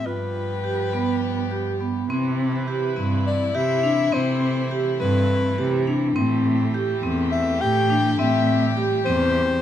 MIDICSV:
0, 0, Header, 1, 5, 480
1, 0, Start_track
1, 0, Tempo, 580833
1, 47, Time_signature, 7, 3, 24, 8
1, 7949, End_track
2, 0, Start_track
2, 0, Title_t, "Soprano saxophone"
2, 0, Program_c, 0, 64
2, 50, Note_on_c, 0, 71, 68
2, 1491, Note_off_c, 0, 71, 0
2, 2700, Note_on_c, 0, 74, 79
2, 2936, Note_on_c, 0, 76, 97
2, 2949, Note_off_c, 0, 74, 0
2, 3420, Note_on_c, 0, 72, 74
2, 3432, Note_off_c, 0, 76, 0
2, 3895, Note_off_c, 0, 72, 0
2, 4136, Note_on_c, 0, 71, 93
2, 4820, Note_off_c, 0, 71, 0
2, 6049, Note_on_c, 0, 76, 82
2, 6291, Note_on_c, 0, 79, 93
2, 6303, Note_off_c, 0, 76, 0
2, 6765, Note_off_c, 0, 79, 0
2, 6770, Note_on_c, 0, 76, 70
2, 7214, Note_off_c, 0, 76, 0
2, 7480, Note_on_c, 0, 72, 101
2, 7949, Note_off_c, 0, 72, 0
2, 7949, End_track
3, 0, Start_track
3, 0, Title_t, "Vibraphone"
3, 0, Program_c, 1, 11
3, 48, Note_on_c, 1, 65, 68
3, 424, Note_off_c, 1, 65, 0
3, 528, Note_on_c, 1, 67, 58
3, 716, Note_off_c, 1, 67, 0
3, 771, Note_on_c, 1, 59, 61
3, 1147, Note_off_c, 1, 59, 0
3, 1250, Note_on_c, 1, 67, 56
3, 1438, Note_off_c, 1, 67, 0
3, 1492, Note_on_c, 1, 59, 53
3, 1679, Note_off_c, 1, 59, 0
3, 1736, Note_on_c, 1, 60, 81
3, 2110, Note_off_c, 1, 60, 0
3, 2213, Note_on_c, 1, 67, 60
3, 2400, Note_off_c, 1, 67, 0
3, 2450, Note_on_c, 1, 60, 60
3, 2826, Note_off_c, 1, 60, 0
3, 2930, Note_on_c, 1, 67, 64
3, 3118, Note_off_c, 1, 67, 0
3, 3168, Note_on_c, 1, 62, 64
3, 3357, Note_off_c, 1, 62, 0
3, 3408, Note_on_c, 1, 60, 81
3, 3785, Note_off_c, 1, 60, 0
3, 3894, Note_on_c, 1, 67, 67
3, 4081, Note_off_c, 1, 67, 0
3, 4131, Note_on_c, 1, 60, 66
3, 4506, Note_off_c, 1, 60, 0
3, 4613, Note_on_c, 1, 67, 71
3, 4800, Note_off_c, 1, 67, 0
3, 4853, Note_on_c, 1, 62, 64
3, 5039, Note_off_c, 1, 62, 0
3, 5090, Note_on_c, 1, 60, 85
3, 5465, Note_off_c, 1, 60, 0
3, 5573, Note_on_c, 1, 67, 63
3, 5759, Note_off_c, 1, 67, 0
3, 5811, Note_on_c, 1, 60, 68
3, 6185, Note_off_c, 1, 60, 0
3, 6290, Note_on_c, 1, 67, 66
3, 6477, Note_off_c, 1, 67, 0
3, 6528, Note_on_c, 1, 62, 60
3, 6715, Note_off_c, 1, 62, 0
3, 6766, Note_on_c, 1, 60, 80
3, 7141, Note_off_c, 1, 60, 0
3, 7248, Note_on_c, 1, 67, 65
3, 7434, Note_off_c, 1, 67, 0
3, 7487, Note_on_c, 1, 60, 67
3, 7861, Note_off_c, 1, 60, 0
3, 7949, End_track
4, 0, Start_track
4, 0, Title_t, "String section"
4, 0, Program_c, 2, 48
4, 44, Note_on_c, 2, 59, 53
4, 52, Note_on_c, 2, 67, 66
4, 54, Note_on_c, 2, 53, 56
4, 1712, Note_off_c, 2, 59, 0
4, 1716, Note_off_c, 2, 67, 0
4, 1717, Note_off_c, 2, 53, 0
4, 1734, Note_on_c, 2, 52, 71
4, 1736, Note_on_c, 2, 71, 61
4, 1738, Note_on_c, 2, 64, 71
4, 3397, Note_off_c, 2, 71, 0
4, 3406, Note_on_c, 2, 57, 62
4, 5060, Note_off_c, 2, 64, 0
4, 5071, Note_off_c, 2, 57, 0
4, 5096, Note_on_c, 2, 67, 76
4, 5100, Note_on_c, 2, 57, 68
4, 6755, Note_off_c, 2, 57, 0
4, 6770, Note_on_c, 2, 55, 61
4, 7949, Note_off_c, 2, 52, 0
4, 7949, Note_off_c, 2, 55, 0
4, 7949, Note_off_c, 2, 67, 0
4, 7949, End_track
5, 0, Start_track
5, 0, Title_t, "Cello"
5, 0, Program_c, 3, 42
5, 44, Note_on_c, 3, 43, 61
5, 1695, Note_off_c, 3, 43, 0
5, 1731, Note_on_c, 3, 48, 79
5, 2349, Note_off_c, 3, 48, 0
5, 2456, Note_on_c, 3, 43, 79
5, 2866, Note_off_c, 3, 43, 0
5, 2936, Note_on_c, 3, 48, 65
5, 3345, Note_off_c, 3, 48, 0
5, 3415, Note_on_c, 3, 48, 80
5, 4030, Note_off_c, 3, 48, 0
5, 4133, Note_on_c, 3, 43, 87
5, 4543, Note_off_c, 3, 43, 0
5, 4614, Note_on_c, 3, 48, 77
5, 5023, Note_off_c, 3, 48, 0
5, 5093, Note_on_c, 3, 45, 83
5, 5708, Note_off_c, 3, 45, 0
5, 5804, Note_on_c, 3, 40, 77
5, 6217, Note_off_c, 3, 40, 0
5, 6289, Note_on_c, 3, 45, 83
5, 6699, Note_off_c, 3, 45, 0
5, 6763, Note_on_c, 3, 45, 83
5, 7381, Note_off_c, 3, 45, 0
5, 7488, Note_on_c, 3, 40, 83
5, 7898, Note_off_c, 3, 40, 0
5, 7949, End_track
0, 0, End_of_file